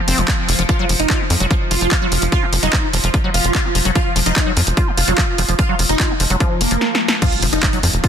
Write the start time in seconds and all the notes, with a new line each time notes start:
Already playing: F3
0.08 F1 C4, open hi-hat
0.18 F1 F3, closed hi-hat
0.28 F3, kick, clap, closed hi-hat
0.49 F1 F3, open hi-hat
0.59 F1 F3, closed hi-hat
0.69 F3 F4, kick, closed hi-hat
0.79 F#3
0.89 F1 F3, open hi-hat
1.00 F1 D#4, closed hi-hat
1.10 F4, kick, clap, closed hi-hat
1.20 F#3
1.30 F2 F3, open hi-hat
1.40 F1 F#3, closed hi-hat
1.51 F3, kick, closed hi-hat
1.71 F1 F3 F4, open hi-hat
1.81 F1 F3, closed hi-hat
1.91 F3, kick, clap, closed hi-hat
2.02 F#3
2.12 F1 F3, open hi-hat
2.22 F1, closed hi-hat
2.32 F4, kick, closed hi-hat
2.42 F#3
2.53 F1 F3, open hi-hat
2.63 F1 F#3 D#4, closed hi-hat
2.73 F3, kick, clap, closed hi-hat
2.93 F1 F3, open hi-hat
3.04 F1 F3, closed hi-hat
3.14 F3, kick, closed hi-hat
3.24 F#3
3.34 F1 F3 F4, open hi-hat
3.44 F1, closed hi-hat
3.55 F4, kick, clap, closed hi-hat
3.65 F#3
3.75 F1 F3, open hi-hat
3.85 F1 F#3, closed hi-hat
3.95 F3 F4, kick, closed hi-hat
4.16 F1 F3, open hi-hat
4.26 F1 F3 D#4, closed hi-hat
4.36 F3, kick, clap, closed hi-hat
4.47 F#3
4.57 F2 F3, open hi-hat
4.67 F1, closed hi-hat
4.77 F4, kick, closed hi-hat
4.87 F#3
4.98 F1 F3 F4, open hi-hat
5.08 F1 F#3, closed hi-hat
5.18 F3, kick, clap, closed hi-hat
5.38 F1 F3, open hi-hat
5.49 F1 F3, closed hi-hat
5.59 F3 F4, kick, closed hi-hat
5.69 F#3
5.79 F1 F3, open hi-hat
5.89 F1 D#4, closed hi-hat
6.00 F4, kick, clap, closed hi-hat
6.10 F#3
6.20 F1 F3, open hi-hat
6.30 F1 F#3, closed hi-hat
6.40 F3, kick, closed hi-hat
6.61 F1 A#3 F4, open hi-hat
6.71 F1 F3, closed hi-hat
6.81 snare
6.95 snare
7.08 snare
7.22 F3 F4, kick, closed hi-hat, crash, impact
7.32 closed hi-hat
7.42 F1 F3, open hi-hat
7.53 F1 F3 D#4, closed hi-hat
7.63 F3, kick, clap, closed hi-hat
7.73 F#3, closed hi-hat
7.83 F2 F3, open hi-hat
7.93 F1, closed hi-hat
8.04 F4, kick, closed hi-hat